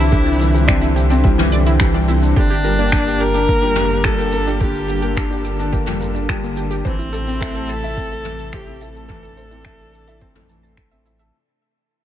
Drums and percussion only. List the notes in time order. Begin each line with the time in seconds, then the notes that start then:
0.12 kick, shaker
0.27 shaker
0.41 shaker
0.55 shaker
0.69 finger snap, kick, shaker
0.83 shaker
0.97 shaker
1.11 shaker
1.25 kick, shaker
1.39 mid tom, shaker
1.52 shaker
1.67 shaker
1.80 finger snap, kick, shaker
1.95 shaker
2.09 shaker
2.22 shaker
2.37 kick, shaker
2.50 shaker
2.65 shaker
2.79 shaker
2.92 finger snap, kick, shaker
3.06 shaker
3.20 shaker
3.35 shaker
3.48 kick, shaker
3.62 shaker
3.76 mid tom, shaker
3.90 shaker
4.04 finger snap, kick, shaker
4.19 shaker
4.31 shaker
4.47 shaker
4.61 kick, shaker
4.75 shaker
4.89 shaker
5.03 shaker
5.17 finger snap, kick, shaker
5.31 shaker
5.45 shaker
5.59 shaker
5.73 kick, shaker
5.87 mid tom, shaker
6.01 shaker
6.16 shaker
6.29 finger snap, kick, shaker
6.44 shaker
6.57 shaker
6.71 shaker
6.85 kick, shaker
6.99 shaker
7.13 shaker
7.27 shaker
7.41 finger snap, kick, shaker
7.56 shaker
7.69 shaker
7.84 shaker
7.97 kick, shaker
8.12 shaker
8.25 mid tom, shaker
8.39 shaker
8.53 finger snap, kick, shaker
8.67 shaker
8.82 shaker
8.96 shaker
9.09 kick, mid tom, shaker
9.24 shaker
9.37 shaker
9.51 shaker
9.65 finger snap, kick, shaker
9.79 shaker
9.93 shaker
10.07 shaker
10.21 kick, shaker
10.35 mid tom, shaker
10.49 shaker
10.64 shaker
10.77 finger snap, kick, shaker
10.91 shaker
11.06 shaker
11.19 shaker